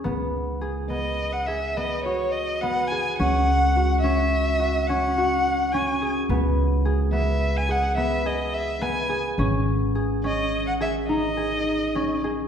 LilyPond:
<<
  \new Staff \with { instrumentName = "Violin" } { \time 11/8 \key gis \phrygian \tempo 4 = 106 r4. dis''8. fis''16 e''8 dis''8 cis''8 dis''8 fis''8 gis''8 | fis''4. e''4. fis''4. gis''8. r16 | r4. e''8. gis''16 fis''8 e''8 dis''8 e''8 gis''8. r16 | r4. dis''8. fis''16 e''8 dis''2 r8 | }
  \new Staff \with { instrumentName = "Harp" } { \time 11/8 \key gis \phrygian b4 gis'8 b4 gis'8 b8 fis'4 b8 gis'8 | cis'4 fis'8 cis'4 fis'8 cis'8 fis'4 cis'8 gis'8 | b4 gis'8 b4 gis'8 b8 gis'4 b8 gis'8 | cis'4 gis'8 cis'4 gis'8 dis'8 gis'4 cis'8 gis'8 | }
  \new Staff \with { instrumentName = "Upright bass" } { \clef bass \time 11/8 \key gis \phrygian cis,1~ cis,4. | cis,1~ cis,4. | cis,1~ cis,4. | gis,,1~ gis,,4. | }
>>